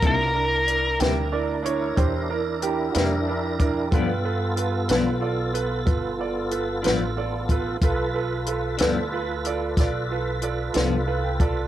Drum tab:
HH |x-xx-xx-xx-x|x-xx-xx-xx-x|x-xx-xx-xx-x|
SD |---o-----o--|---o-----o--|---o--o--o--|
BD |o-----o----o|o-----o----o|o-----o----o|